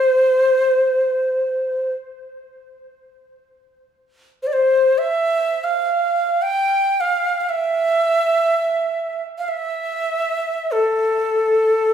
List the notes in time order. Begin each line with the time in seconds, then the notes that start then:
Already playing: C5
4.43 C5
4.47 D5
4.53 C5
4.98 E5
5.64 F5
6.42 G5
7.00 F5
7.41 F5
7.49 E5
9.38 F5
9.49 E5
10.72 A4